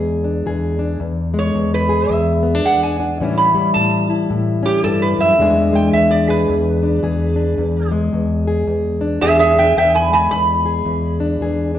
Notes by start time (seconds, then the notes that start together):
Already playing: E2 G#3 G#4
0.24 D4
0.46 E2 G#4
0.79 D4
1.00 E2
1.34 G#3
1.39 C#5
1.55 E2
1.74 B4
1.89 G#4
2.10 E2 E5
2.43 B3
2.55 D4
2.65 E2 G#4 F#5
2.83 G#5
3.00 D4
3.20 A2 E3 G3 C#4 E4
3.38 B5
3.54 G3
3.74 A2 A5
4.10 E4
4.30 A2
4.63 C#4 G4
4.84 G2 A4
5.02 B4
5.18 F#2 E5
5.38 E2 E3 G#3 D4 G#4
5.73 G#3 G5
5.93 E2 E5
6.11 D5
6.29 G#4 B4
6.49 E2
6.83 D4
7.03 E2 G#4
7.36 D4
7.58 E2
7.92 G#3
8.13 E2
8.47 G#4
8.67 E2
9.01 D4
9.21 E2 G#4 E5
9.39 G#4 E5
9.56 D4 E5 G5
9.77 E2 E5 G5
9.95 G#5 B5
10.10 G#3 G#5
10.14 B5
10.31 E2 B5
10.66 G#4
10.85 E2
11.20 D4
11.41 E2 G#4
11.75 D4